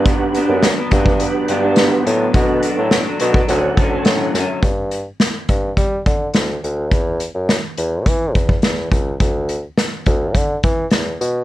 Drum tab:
HH |x-x-x-x-x-x-x-x-|x-x-x-x-x-x-x-x-|x-x-x-x-x-x-x-x-|x-x-x-x-x-x-x-x-|
SD |----o-------o---|----o-------o-o-|----o-------o---|----o-------o---|
BD |o-----oo--------|o------o--o-----|o-----o-o-o-----|o-------o-oo--o-|

HH |x-x-x-x-x-x-x-x-|
SD |----o-------o---|
BD |o-----o-o-o-----|